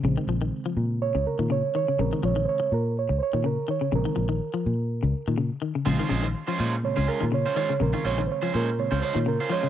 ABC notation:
X:1
M:4/4
L:1/16
Q:"Swing 16ths" 1/4=124
K:Bbm
V:1 name="Reed electric piano"
z8 d2 B2 d2 d2 | B2 d2 [cd]2 B2 d2 [cd]2 B2 d2 | B12 z4 | z8 d2 B2 d2 d2 |
B2 d2 [cd]2 B2 d2 [cd]2 B2 d2 |]
V:2 name="Reed electric piano" clef=bass
[D,A,C]16 | [D,A,C]6 z8 z2 | [D,A,C]2 z12 z2 | [D,A,C]2 z6 [D,A,C]2 z6 |
[D,A,C]6 z2 [D,A,C]2 z6 |]
V:3 name="Clean electric guitar"
z16 | z16 | z16 | [A,Fc] [DFc] [A,DFc] z2 [DFc] [A,DFc] z2 [DFc] [A,DF] z2 [DFc] [A,DFc] z |
z [DF] [A,DFc] z2 [DFc] [A,Dc] z2 [DFc] [A,DFc] z2 [DFc] [A,DFc] z |]
V:4 name="Clean electric guitar" clef=bass
D, E, F, E,2 F,2 z2 D,2 E, D,2 E, D, | D, E, F, E,2 z6 E, D,2 E, D, | D, E, F, E,2 F,2 z2 D,2 E, D,2 E, D, | D, E, D, E,2 F,2 z2 D,2 E, D,2 E, D, |
D, E, z E,2 F,2 z2 D,2 E, D,2 F, D, |]
V:5 name="Fingered electric bass" clef=bass
B,,, z B,,,2 z2 B,,3 D,, z B,,2 z3 | B,,, z B,,,2 z2 B,,3 D,, z B,,2 z3 | B,,, z B,,,2 z2 B,,3 D,, z B,,2 z3 | B,,, z B,,,2 z2 B,,3 D,, z B,,2 z3 |
B,,, z B,,,2 z2 B,,3 D,, z B,,2 z3 |]